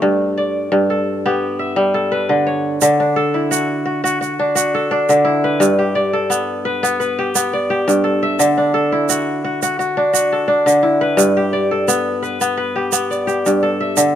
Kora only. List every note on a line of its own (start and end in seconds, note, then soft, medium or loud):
0.00 0.70 G2 medium
0.00 1.51 A3 medium
0.00 0.66 D4 medium
0.00 0.73 E4 medium
0.00 1.08 G4 medium
0.37 1.48 D5 medium
0.72 2.87 G2 medium
0.90 1.94 A4 medium
1.26 3.12 B3 medium
1.26 2.67 G4 medium
1.59 2.63 E5 medium
1.76 2.34 G3 medium
1.94 3.16 A4 medium
2.12 3.35 B4 medium
2.29 2.81 D3 medium
2.47 3.06 C#5 medium
2.82 5.08 D3 medium
3.00 4.39 D4 medium
3.16 4.48 A4 medium
3.34 4.91 E4 medium
3.51 3.85 F#4 medium
3.85 4.03 F#4 medium
4.04 4.21 F#4 medium
4.21 4.55 F#4 medium
4.39 4.91 D4 medium
4.55 5.66 F#4 medium
4.75 6.06 A4 medium
4.91 6.59 D4 medium
5.09 5.65 D3 medium
5.25 6.81 E4 medium
5.44 6.65 B4 medium
5.60 7.86 G2 medium
5.79 7.18 G4 medium
5.95 7.06 D5 medium
6.13 7.45 A4 medium
6.30 6.83 B3 medium
6.65 6.99 B4 medium
6.83 7.35 B3 medium
7.00 8.23 B4 medium
7.19 7.70 G4 medium
7.35 9.22 B3 medium
7.53 8.64 D5 medium
7.70 9.15 G4 medium
7.88 8.44 G2 medium
8.04 8.73 A4 medium
8.23 9.26 E5 medium
8.39 10.65 D3 medium
8.58 9.97 D4 medium
8.74 10.06 A4 medium
8.92 10.49 E4 medium
9.09 9.44 F#4 medium
9.44 9.62 F#4 medium
9.62 9.79 F#4 medium
9.79 10.13 F#4 medium
9.97 10.47 D4 medium
10.13 11.23 F#4 medium
10.32 11.64 A4 medium
10.48 12.16 D4 medium
10.66 11.24 D3 medium
10.83 12.39 E4 medium
11.01 12.22 B4 medium
11.17 13.45 G2 medium
11.37 12.75 G4 medium
11.53 12.64 D5 medium
11.71 13.03 A4 medium
11.88 12.41 B3 medium
12.22 12.57 B4 medium
12.41 12.92 B3 medium
12.57 13.80 B4 medium
12.76 13.27 G4 medium
12.92 14.15 B3 medium
13.11 14.15 D5 medium
13.27 14.15 G4 medium
13.46 14.03 G2 medium
13.63 14.15 A4 medium
13.80 14.15 E5 medium
13.97 14.15 D3 medium